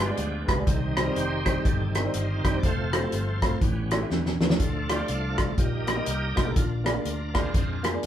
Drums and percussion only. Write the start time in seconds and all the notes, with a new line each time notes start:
0.17 closed hi-hat
0.48 kick, cross-stick, closed hi-hat
0.67 kick, closed hi-hat
0.97 cross-stick, closed hi-hat
1.16 closed hi-hat
1.46 kick, cross-stick, closed hi-hat
1.65 kick, closed hi-hat
1.95 cross-stick, closed hi-hat
2.14 closed hi-hat
2.45 kick, cross-stick, closed hi-hat
2.63 kick, closed hi-hat
2.93 cross-stick, closed hi-hat
3.12 closed hi-hat
3.42 kick, cross-stick, closed hi-hat
3.61 kick, closed hi-hat
3.91 cross-stick, closed hi-hat
4.11 snare
4.26 snare
4.41 snare
4.50 snare
4.60 kick, closed hi-hat
4.89 cross-stick, closed hi-hat
5.08 closed hi-hat
5.38 kick, cross-stick, closed hi-hat
5.58 kick, closed hi-hat
5.87 cross-stick, closed hi-hat
6.06 closed hi-hat
6.37 kick, cross-stick, closed hi-hat
6.56 kick, closed hi-hat
6.86 cross-stick, closed hi-hat
7.05 closed hi-hat
7.35 kick, cross-stick, closed hi-hat
7.54 kick, closed hi-hat
7.84 cross-stick, closed hi-hat
8.03 closed hi-hat